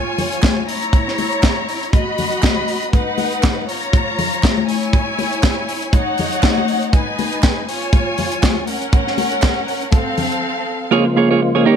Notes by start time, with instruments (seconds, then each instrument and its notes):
Already playing: string section F4 C#5 G#5
0.18 open hi-hat, muted conga, low conga
0.32 closed hi-hat
0.43 kick, snare, clap, closed hi-hat, high conga
0.45 clap
0.57 high conga
0.68 string section E4 C#5 A#5, open hi-hat
0.82 closed hi-hat
0.93 kick, closed hi-hat, muted conga
1.08 snare
1.18 open hi-hat, muted conga
1.33 closed hi-hat
1.43 kick, snare, clap, closed hi-hat, high conga
1.69 open hi-hat
1.83 closed hi-hat
1.93 string section F#4 D#5 B5, kick, closed hi-hat, muted conga
2.18 open hi-hat, muted conga, low conga
2.32 closed hi-hat
2.43 kick, snare, clap, closed hi-hat, high conga
2.44 clap
2.58 high conga
2.68 open hi-hat
2.83 closed hi-hat
2.93 string section D#4 B4 F#5, kick, closed hi-hat, muted conga
3.18 open hi-hat, muted conga
3.32 closed hi-hat
3.43 kick, snare, clap, closed hi-hat, high conga
3.68 string section F4 C#5 A#5, open hi-hat
3.83 closed hi-hat
3.93 kick, closed hi-hat, muted conga
4.19 open hi-hat, low conga
4.33 closed hi-hat
4.43 kick, snare, clap, closed hi-hat, high conga
4.45 clap
4.58 high conga
4.68 string section E4 C#5 G#5, open hi-hat
4.83 closed hi-hat
4.93 kick, closed hi-hat, muted conga
5.19 open hi-hat, muted conga
5.33 closed hi-hat
5.43 kick, snare, clap, closed hi-hat, high conga
5.69 open hi-hat
5.82 closed hi-hat
5.93 string section D#4 C#5 F#5, kick, closed hi-hat, muted conga
6.18 open hi-hat, low conga
6.32 closed hi-hat
6.43 kick, snare, clap, closed hi-hat, high conga
6.58 high conga
6.68 open hi-hat
6.83 closed hi-hat
6.93 string section D#4 B4 G#5, kick, closed hi-hat, muted conga
7.19 open hi-hat, muted conga
7.33 closed hi-hat
7.43 kick, snare, clap, closed hi-hat, high conga
7.68 string section F4 C#5 G#5, open hi-hat
7.82 closed hi-hat
7.93 kick, closed hi-hat, muted conga
8.18 open hi-hat, muted conga, low conga
8.32 closed hi-hat
8.43 kick, snare, clap, closed hi-hat, high conga
8.57 high conga
8.67 string section C#4 A#4 F#5, open hi-hat
8.82 closed hi-hat
8.93 kick, closed hi-hat, muted conga
9.07 snare
9.18 open hi-hat, muted conga
9.32 closed hi-hat
9.42 kick, snare, clap, closed hi-hat, high conga
9.68 open hi-hat
9.82 closed hi-hat
9.92 string section C4 A4 F5, kick, closed hi-hat, muted conga
10.18 open hi-hat, low conga
10.32 closed hi-hat
10.91 tonewheel organ C#3 F3 G#3 A#3 F4, clean electric guitar A#3 F4 G#4 C#5
11.05 muted clean electric guitar stroke
11.16 clean electric guitar A#3 F4 G#4 C#5
11.31 clean electric guitar A#3 F4 G#4 C#5
11.42 muted clean electric guitar stroke
11.55 clean electric guitar A#3 F4 G#4 C#5
11.65 tonewheel organ D#3 G3 C#4 G4, clean electric guitar A#3 D#4 G4 C#5